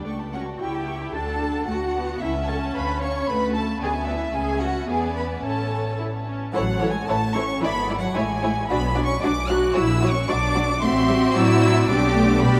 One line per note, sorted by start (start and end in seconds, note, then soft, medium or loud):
0.07 0.54 C#2 medium
0.07 0.34 A3 soft
0.07 0.19 C#6 soft
0.20 0.34 A5 soft
0.34 0.42 C#4 medium
0.34 0.59 F#4 medium
0.34 0.42 F#5 medium
0.34 0.48 C#6 soft
0.48 0.61 A5 soft
0.60 1.08 C#2 medium
0.60 1.13 E4 medium
0.60 1.14 G4 medium
0.60 1.13 G5 medium
0.60 0.73 C#6 medium
0.74 0.88 A5 soft
0.87 1.01 C#6 soft
1.00 1.12 A5 soft
1.14 1.61 D2 medium
1.14 1.68 D4 medium
1.14 1.68 A4 medium
1.14 1.26 A5 medium
1.14 1.67 A5 medium
1.27 1.40 F#5 soft
1.39 1.53 A5 medium
1.53 1.67 F#5 soft
1.66 2.15 D2 medium
1.66 1.76 A3 medium
1.66 2.20 F#4 medium
1.66 2.20 F#5 medium
1.66 1.79 A5 medium
1.79 1.94 F#5 medium
1.94 2.21 B3 medium
1.94 2.07 A5 soft
2.07 2.21 F#5 soft
2.20 2.68 C#2 medium
2.20 3.28 C#4 medium
2.20 2.30 E4 medium
2.20 2.47 E5 medium
2.20 2.33 C#6 medium
2.33 2.47 A5 medium
2.47 2.56 A4 medium
2.47 2.74 A5 medium
2.47 2.61 C#6 medium
2.60 2.74 A5 medium
2.73 3.22 D2 medium
2.73 3.01 B4 loud
2.73 2.86 F5 medium
2.73 3.01 B5 medium
2.87 3.01 A5 medium
3.01 3.28 C#5 medium
3.01 3.14 F5 medium
3.01 3.28 C#6 medium
3.14 3.28 A5 medium
3.27 3.75 D2 medium
3.27 3.81 A3 medium
3.27 3.55 B4 medium
3.27 3.40 B5 medium
3.27 3.55 B5 medium
3.41 3.54 A5 medium
3.54 3.63 A4 medium
3.54 3.81 A5 medium
3.54 3.68 B5 medium
3.67 3.81 A5 medium
3.81 4.29 D2 medium
3.81 4.35 B3 medium
3.81 3.90 G#4 loud
3.81 3.93 D5 medium
3.81 4.07 G#5 medium
3.94 4.07 E5 medium
4.07 4.34 E4 medium
4.07 4.21 D5 soft
4.07 4.35 E5 medium
4.20 4.33 E5 medium
4.34 4.85 C#2 medium
4.34 4.88 C#4 medium
4.34 4.61 G#4 loud
4.34 4.85 E5 medium
4.34 4.62 G#5 medium
4.61 4.89 F#4 medium
4.61 4.89 F#5 medium
4.88 5.44 E2 medium
4.88 5.42 B3 medium
4.88 5.16 G#4 medium
4.88 5.43 D5 medium
4.88 5.16 G#5 medium
5.16 5.43 B4 medium
5.16 5.25 B5 medium
5.43 6.32 A1 medium
5.43 5.92 C#4 medium
5.43 5.98 A4 medium
5.43 6.34 C#5 medium
5.43 5.98 A5 medium
5.99 6.07 E4 medium
6.26 6.53 C#4 medium
6.54 7.02 A1 medium
6.54 6.62 E3 medium
6.54 6.88 F#3 loud
6.54 6.62 E4 medium
6.54 6.62 A4 medium
6.54 6.63 C#5 medium
6.54 6.88 F#5 loud
6.81 6.89 E3 medium
6.81 6.89 E4 medium
6.81 6.89 A4 medium
6.81 6.89 C#5 medium
6.90 7.09 G#3 medium
6.90 7.09 G#5 medium
7.08 7.56 A1 medium
7.08 7.16 E3 medium
7.08 7.36 A3 medium
7.08 7.16 E4 medium
7.08 7.17 A4 medium
7.08 7.17 C#5 medium
7.08 7.35 A5 loud
7.35 7.43 E3 medium
7.35 7.62 C#4 medium
7.35 7.43 E4 medium
7.35 7.43 A4 medium
7.35 7.44 C#5 medium
7.35 7.62 C#6 loud
7.62 8.10 G#1 medium
7.62 7.70 E3 medium
7.62 7.98 B3 medium
7.62 7.70 E4 medium
7.62 7.72 E4 medium
7.62 7.71 D5 medium
7.62 7.97 B5 loud
7.89 7.97 E3 medium
7.89 7.97 E4 medium
7.89 7.97 D5 medium
7.98 8.16 F#3 medium
7.98 8.16 F#5 loud
8.15 8.63 A1 medium
8.15 8.69 G#3 medium
8.15 8.24 A3 medium
8.15 8.24 E4 medium
8.15 8.25 E4 medium
8.15 8.25 C#5 medium
8.15 8.69 G#5 loud
8.43 8.51 A3 medium
8.43 8.51 E4 medium
8.43 8.51 C#5 medium
8.69 9.16 B1 medium
8.69 8.78 F#3 medium
8.69 9.04 B3 medium
8.69 8.78 D4 medium
8.69 8.78 F#4 medium
8.69 8.78 D5 medium
8.69 9.04 B5 loud
8.95 9.04 F#3 medium
8.95 9.04 D4 medium
8.95 9.03 F#4 medium
8.95 9.04 D5 medium
9.04 9.12 C#4 medium
9.04 9.23 C#6 loud
9.22 9.69 B1 medium
9.22 9.31 F#3 medium
9.22 9.31 D4 medium
9.22 9.30 F#4 medium
9.22 9.30 D5 medium
9.22 9.49 D6 loud
9.49 9.57 F#3 medium
9.49 9.57 D4 medium
9.49 9.57 F#4 medium
9.49 9.75 F#4 loud
9.49 9.57 D5 medium
9.49 9.76 F#6 loud
9.74 10.22 A#1 medium
9.74 9.84 F#3 medium
9.74 10.11 E4 loud
9.74 9.82 F#4 medium
9.74 9.84 F#4 medium
9.74 9.82 C#5 medium
9.74 10.10 E6 loud
10.01 10.10 F#3 medium
10.01 10.09 F#4 medium
10.01 10.10 F#4 medium
10.01 10.09 C#5 medium
10.11 10.18 C#4 medium
10.11 10.29 C#6 loud
10.28 10.75 B1 medium
10.28 10.37 F#3 medium
10.28 10.36 D4 medium
10.28 10.81 D4 loud
10.28 10.37 F#4 medium
10.28 10.37 D5 medium
10.28 10.82 D6 loud
10.55 10.63 F#3 medium
10.55 10.63 D4 medium
10.55 10.63 F#4 medium
10.55 10.63 D5 medium
10.81 11.31 A1 medium
10.81 10.90 A3 medium
10.81 11.84 C4 medium
10.81 11.34 C4 loud
10.81 11.84 F#4 medium
10.81 11.31 E5 medium
10.81 11.35 C6 loud
11.08 11.16 G3 medium
11.35 11.87 A2 medium
11.35 11.60 F#3 medium
11.35 11.88 E4 loud
11.35 12.41 D5 medium
11.35 11.88 E6 loud
11.62 11.88 F#3 medium
11.88 12.41 B1 loud
11.88 11.96 G3 medium
11.88 12.41 B3 medium
11.88 12.41 D4 loud
11.88 12.41 G4 medium
11.88 12.42 D6 loud
12.15 12.41 A3 medium
12.41 12.60 B2 medium
12.41 12.60 G3 medium
12.41 12.60 B3 loud
12.41 12.60 D4 medium
12.41 12.60 G4 medium
12.41 12.60 D5 medium
12.41 12.60 B5 loud